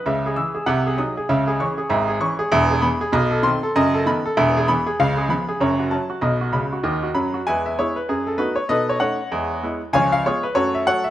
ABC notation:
X:1
M:4/4
L:1/8
Q:"Swing" 1/4=194
K:C#dor
V:1 name="Grand piano"
e G e' G f G d' G | e G c' G e G c' G | [K:E] e G b G d A =c' A | d A b A e G b G |
^e G b G c F a F | d F b F d F b F | [Beg] e [EGc] B G A [DFB] c | [ABd] c [cdf]4- [cdf] z |
[c^eg] e [^EGc] B [FAc] =e [Acf] e |]
V:2 name="Grand piano" clef=bass
[C,,C,]2 E,2 [^B,,,^B,,]2 [F,D]2 | [C,,C,]2 [E,C]2 [G,,,G,,]2 [E,C]2 | [K:E] [E,,,E,,]2 [E,B,]2 [B,,,B,,]2 [D,=C]2 | [F,,,F,,]2 [D,B,]2 [E,,,E,,]2 [E,B,]2 |
[C,,C,]2 [^E,B,]2 [F,,,F,,]2 [F,C]2 | [B,,,B,,]2 [C,,C,]2 [D,,D,]2 [F,,F,]2 | [E,,G,]2 [G,B,]2 F,,2 [A,B,]2 | [B,,D]2 [A,CD]2 [E,,G,]2 [G,B,E]2 |
[C,,^E,]2 [G,B,]2 [F,,A,]2 [F,A,F]2 |]